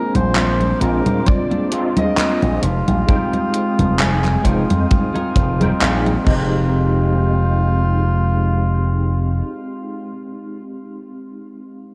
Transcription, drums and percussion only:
0.15 closed hi-hat, high conga
0.35 clap, closed hi-hat, high conga
0.61 closed hi-hat, high conga
0.81 closed hi-hat
1.06 closed hi-hat, high conga
1.26 kick, closed hi-hat, high conga
1.51 closed hi-hat, high conga
1.72 closed hi-hat
1.97 closed hi-hat, high conga
2.18 clap, closed hi-hat, high conga
2.42 closed hi-hat, high conga
2.63 closed hi-hat
2.88 closed hi-hat, high conga
3.09 kick, closed hi-hat, high conga
3.33 closed hi-hat, high conga
3.54 closed hi-hat
3.79 closed hi-hat, high conga
3.99 clap, closed hi-hat, high conga
4.24 clap, closed hi-hat, high conga
4.45 kick, closed hi-hat
4.70 closed hi-hat, high conga
4.91 kick, closed hi-hat, high conga
5.15 closed hi-hat, high conga
5.36 kick, closed hi-hat
5.61 closed hi-hat, high conga
5.81 clap, closed hi-hat, high conga
6.06 closed hi-hat, high conga
6.27 kick, crash

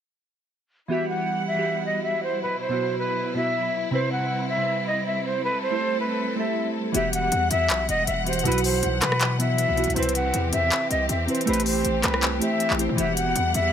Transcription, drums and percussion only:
6.94 closed hi-hat
7.13 closed hi-hat
7.32 closed hi-hat
7.51 closed hi-hat
7.70 clap, closed hi-hat
7.89 closed hi-hat
8.07 closed hi-hat
8.27 closed hi-hat
8.33 closed hi-hat
8.39 closed hi-hat
8.45 closed hi-hat
8.52 closed hi-hat
8.58 closed hi-hat
8.64 open hi-hat
8.83 closed hi-hat
9.02 cross-stick, clap, closed hi-hat
9.12 cross-stick
9.21 clap, closed hi-hat
9.40 closed hi-hat
9.58 closed hi-hat
9.77 closed hi-hat
9.84 closed hi-hat
9.90 closed hi-hat
9.96 closed hi-hat
10.03 closed hi-hat
10.09 closed hi-hat
10.15 closed hi-hat
10.34 closed hi-hat
10.53 closed hi-hat
10.72 clap, closed hi-hat
10.91 closed hi-hat
11.09 closed hi-hat
11.28 closed hi-hat
11.35 closed hi-hat
11.41 closed hi-hat
11.47 closed hi-hat
11.53 closed hi-hat
11.60 closed hi-hat
11.66 open hi-hat
11.85 closed hi-hat
12.03 cross-stick, clap, closed hi-hat
12.14 cross-stick
12.23 clap, closed hi-hat
12.42 closed hi-hat
12.60 closed hi-hat
12.70 clap
12.79 closed hi-hat
12.98 closed hi-hat
13.17 closed hi-hat
13.36 closed hi-hat
13.54 closed hi-hat

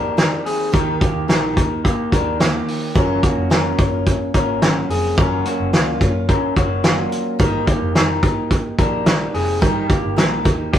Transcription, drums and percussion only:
0.18 snare, closed hi-hat
0.46 open hi-hat
0.74 kick, closed hi-hat
1.01 kick, closed hi-hat
1.29 snare, closed hi-hat
1.57 kick, closed hi-hat
1.85 kick, closed hi-hat
2.12 kick, closed hi-hat
2.40 snare, closed hi-hat
2.68 open hi-hat
2.95 kick, closed hi-hat
3.23 kick, closed hi-hat
3.51 snare, closed hi-hat
3.78 kick, closed hi-hat
4.06 kick, closed hi-hat
4.34 kick, closed hi-hat
4.62 snare, closed hi-hat
4.90 open hi-hat
5.18 kick, closed hi-hat
5.45 closed hi-hat
5.73 snare, closed hi-hat
6.01 kick, closed hi-hat
6.29 kick, closed hi-hat
6.56 kick, closed hi-hat
6.84 snare, closed hi-hat
7.12 closed hi-hat
7.40 kick, closed hi-hat
7.67 kick, closed hi-hat
7.95 snare, closed hi-hat
8.23 kick, closed hi-hat
8.50 kick, closed hi-hat
8.79 kick, closed hi-hat
9.06 snare, closed hi-hat
9.34 open hi-hat
9.62 kick, closed hi-hat
9.89 kick, closed hi-hat
10.18 snare, closed hi-hat
10.45 kick, closed hi-hat
10.73 kick, closed hi-hat

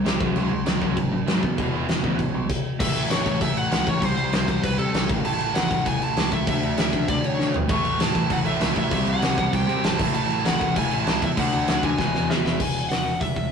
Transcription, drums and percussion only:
0.06 snare, crash
0.21 kick
0.36 crash
0.66 snare, crash
0.82 kick
0.97 kick, crash
1.27 snare, crash
1.43 kick
1.58 kick, crash
1.89 snare, crash
2.04 kick
2.19 kick, crash
2.49 kick, crash
2.80 kick, crash
2.96 crash
3.10 snare, crash
3.26 kick, crash
3.41 kick, crash
3.57 crash
3.72 snare, crash
3.87 kick, crash
4.02 kick, crash
4.17 crash
4.33 snare, crash
4.48 kick, crash
4.64 kick, crash
4.79 crash
4.94 snare, crash
5.09 kick, crash
5.25 crash
5.41 crash
5.55 snare, crash
5.71 kick, crash
5.86 kick, crash
6.02 crash
6.17 snare, crash
6.32 kick, crash
6.47 kick, crash
6.63 crash
6.78 snare, crash
6.93 kick, crash
7.08 kick, crash
7.24 crash
7.40 snare
7.54 floor tom
7.69 kick, crash
7.85 crash
8.00 snare, crash
8.15 kick, crash
8.30 kick, crash
8.46 crash
8.61 snare, crash
8.76 kick, crash
8.91 kick, crash
9.07 crash
9.22 snare, crash
9.38 kick, crash
9.53 kick, crash
9.69 crash
9.84 snare, crash
9.99 kick, crash
10.14 crash
10.30 crash
10.45 snare, crash
10.61 kick, crash
10.76 kick, crash
10.91 crash
11.07 snare, crash
11.22 kick, crash
11.37 kick, crash
11.53 crash
11.68 snare, crash
11.83 kick, crash
11.98 kick, snare
12.15 snare
12.31 snare
12.46 snare
12.60 kick, crash
12.91 snare, open hi-hat
13.21 kick, open hi-hat
13.36 kick

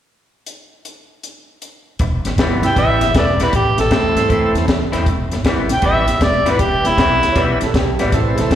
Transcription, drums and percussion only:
0.46 closed hi-hat
0.85 closed hi-hat
1.23 closed hi-hat
1.62 closed hi-hat
1.99 kick, closed hi-hat
2.25 snare, closed hi-hat
2.38 kick, snare, closed hi-hat
2.63 snare, closed hi-hat
2.76 kick, snare, closed hi-hat
3.01 snare, closed hi-hat
3.15 kick, snare, closed hi-hat
3.40 snare, closed hi-hat
3.53 kick, closed hi-hat
3.78 snare, closed hi-hat
3.91 kick, snare, closed hi-hat
4.17 snare, closed hi-hat
4.30 kick, closed hi-hat
4.55 snare, closed hi-hat
4.68 kick, snare, closed hi-hat
4.93 snare, closed hi-hat
5.06 kick, closed hi-hat
5.31 snare, closed hi-hat
5.45 kick, snare, closed hi-hat
5.69 snare, closed hi-hat
5.82 kick, closed hi-hat
6.08 snare, closed hi-hat
6.21 kick, snare, closed hi-hat
6.46 snare, closed hi-hat
6.59 kick, closed hi-hat
6.85 snare, closed hi-hat
6.98 kick, snare, closed hi-hat
7.23 snare, closed hi-hat
7.36 kick, snare, closed hi-hat
7.61 snare, closed hi-hat
7.74 kick, snare, closed hi-hat
7.99 snare, closed hi-hat
8.12 kick, snare, closed hi-hat
8.38 snare, closed hi-hat
8.51 kick, closed hi-hat

